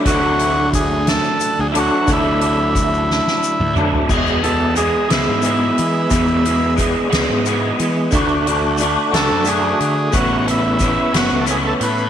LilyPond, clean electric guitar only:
\new Staff \with { instrumentName = "Clean electric guitar" } { \time 6/8 \key e \mixolydian \tempo 4. = 60 <d fis a d' e'>2~ <d fis a d' e'>8 <d fis a d' e'>8 | <d fis a d' e'>2~ <d fis a d' e'>8 <d fis a d' e'>8 | <e, b, e gis b gis'>8 <e gis b gis'>8 <e gis b gis'>8 <e, b, e gis b gis'>8 <e gis b gis'>4 | <e, b, e gis b gis'>8 <e gis b gis'>8 <e gis b gis'>8 <e, b, e gis b gis'>8 <e gis b gis'>4 |
<d a d' fis'>8 <a d' fis'>8 <d a d' fis'>8 <d a d' fis'>8 <d a d' fis'>4 | <a, e b cis' e'>8 <b cis' e'>8 <e b cis' e'>8 <a, e b cis' e'>8 <e b cis' e'>4 | }